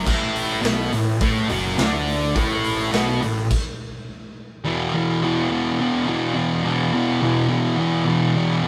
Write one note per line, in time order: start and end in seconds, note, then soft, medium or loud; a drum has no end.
0.06 0.59 A1 medium
0.06 0.61 A2 loud
0.06 0.63 A3 loud
0.06 kick loud
0.06 crash loud
0.36 open hi-hat medium
0.62 0.90 B1 medium
0.62 0.90 B2 loud
0.62 0.91 B3 loud
0.62 snare loud
0.62 open hi-hat medium
0.92 1.19 A1 medium
0.92 1.15 A2 medium
0.92 open hi-hat medium
1.20 1.47 A1 loud
1.20 1.48 A2 medium
1.20 1.49 A3 loud
1.20 kick loud
1.20 open hi-hat medium
1.48 1.77 F#1 loud
1.48 1.76 F#2 medium
1.48 1.77 F#3 loud
1.48 open hi-hat medium
1.78 2.31 D2 medium
1.78 2.34 D3 medium
1.78 2.35 D4 loud
1.78 snare loud
1.78 open hi-hat medium
2.07 open hi-hat medium
2.36 2.89 A1 medium
2.36 2.92 A2 loud
2.36 2.93 A3 loud
2.36 kick loud
2.36 open hi-hat medium
2.64 open hi-hat medium
2.92 3.19 B1 medium
2.92 3.20 B2 loud
2.92 3.21 B3 loud
2.92 snare loud
2.92 open hi-hat medium
3.22 3.48 A1 medium
3.22 3.44 A2 medium
3.22 open hi-hat medium
3.51 kick loud
3.51 crash loud
4.64 4.93 E2 medium
4.64 4.94 B2 loud
4.64 4.96 E3 loud
4.94 5.21 E2 medium
4.94 5.22 B2 medium
4.94 5.23 E3 medium
5.22 5.50 E2 loud
5.22 5.50 B2 loud
5.22 5.52 E3 loud
5.50 5.78 E2 loud
5.50 5.79 B2 loud
5.50 5.80 E3 loud
5.80 6.06 E2 medium
5.80 6.07 B2 medium
5.80 6.08 E3 loud
6.07 6.33 E2 medium
6.07 6.34 B2 loud
6.07 6.34 E3 loud
6.34 6.62 E2 medium
6.34 6.63 B2 medium
6.34 6.64 E3 medium
6.63 6.91 E2 medium
6.63 6.93 B2 loud
6.63 6.93 E3 loud
6.92 7.20 E2 loud
6.92 7.21 B2 loud
6.92 7.22 E3 loud
7.21 7.48 E2 medium
7.21 7.48 B2 medium
7.21 7.50 E3 loud
7.49 7.75 E2 loud
7.49 7.76 B2 loud
7.49 7.78 E3 loud
7.76 8.04 E2 loud
7.76 8.05 B2 loud
7.76 8.06 E3 loud
8.05 8.35 E2 medium
8.05 8.36 B2 loud
8.05 8.36 E3 loud
8.36 8.61 E2 loud
8.36 8.63 B2 loud
8.36 8.63 E3 loud
8.63 8.68 E2 medium
8.63 8.68 B2 medium
8.63 8.68 E3 medium